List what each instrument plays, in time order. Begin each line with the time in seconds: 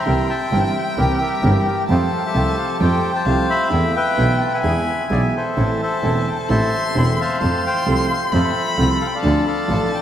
Already playing: bandoneon E5 G5 A#5
0.05 upright piano C2 C3 E3 A#3 C4 G4, double bass C2, bandoneon C4 E4 A#4, violin G5
0.30 bandoneon E5 A5
0.51 double bass G1, upright piano G1 G2 E3 A#3 C4 G4, bandoneon C4 E4 A#4
0.74 bandoneon G5
0.97 double bass C2, upright piano C2 C3 E3 A#3 C4 G4, bandoneon C4 E4 G4 A#4 E5
1.21 bandoneon G4 A#4 E5
1.43 double bass G1, upright piano G1 G2 E3 A#3 C4 G4, bandoneon C4 E4 A#4
1.88 upright piano F2 F3 A3 C4 G4, double bass F2, bandoneon A3 F4 G4 A4 C5 F5, violin A5
2.17 bandoneon F5
2.26 bandoneon G4 A4 E5
2.34 upright piano C2 C3 F3 A3 C4 G4, double bass C2, bandoneon A3 F4 G4
2.58 bandoneon F5
2.80 upright piano F2 F3 A3 C4 G4, double bass F2, bandoneon A3 F4 G4 C5 G5, violin G5
3.16 bandoneon C5 A5
3.26 double bass C2, upright piano C2 C3 F3 A3 C4 G4, bandoneon A3 F4 G4, violin F5
3.50 bandoneon E5 B5
3.70 upright piano E2 E3 A3 B3 A4, double bass E2, bandoneon B3 E4 A4, violin G5
3.96 bandoneon B4 E5 G5
4.17 double bass B1, upright piano B1 B2 E3 A3 B3 A4, bandoneon B3 E4 A4
4.40 bandoneon A5
4.53 bandoneon E5 G#5 B5
4.64 double bass E2, upright piano E2 E3 G#3 B3 G#4, bandoneon B3 E4 G#4, violin G#5
5.10 upright piano B1 B2 E3 G#3 B3 G#4, double bass B1, bandoneon B3 E4 G#4 D5
5.37 bandoneon A4 C5 E5
5.56 upright piano A1 A2 E3 A3 C4 A4, double bass A1, bandoneon C4 E4 A4, violin A5
5.83 bandoneon A4 C5 E5
6.02 upright piano E1 E2 E3 A3 C4 A4, double bass E1, bandoneon C4 E4 A4
6.28 bandoneon G5
6.49 upright piano A1 A2 E3 A3 C4 A4, double bass A1, bandoneon C4 E4 A4 C5 E5 A5, violin C6
6.86 bandoneon A5
6.95 upright piano E1 E2 E3 A3 C4 A4, double bass E1, bandoneon C4 E4 A4 B5
7.21 bandoneon C5 F5 A5
7.40 upright piano F2 F3 A3 C4 A4, double bass F2, bandoneon C4 F4 A4, violin C6
7.66 bandoneon C5 G5
7.86 upright piano C2 C3 F3 A3 C4 A4, double bass C2, bandoneon C4 F4 A4
8.11 bandoneon F5
8.32 upright piano F2 F3 A3 C4 A4, double bass F2, bandoneon C4 F4 A4 C5 E5, violin B5
8.39 bandoneon F5
8.44 bandoneon E5
8.57 bandoneon E5
8.77 upright piano C2 C3 F3 A3 C4 A4, double bass C2, bandoneon C4 F4 A4 C5
9.01 bandoneon F5
9.07 bandoneon G5
9.15 bandoneon A4 D5 F5
9.22 upright piano D2 D3 F3 A3 D4 A4, double bass D2, bandoneon D4 F4 A4, violin A5
9.47 bandoneon A4 D5 F5
9.68 upright piano A1 A2 F3 A3 D4 A4, double bass A1, bandoneon D4 F4 A4
9.94 bandoneon G5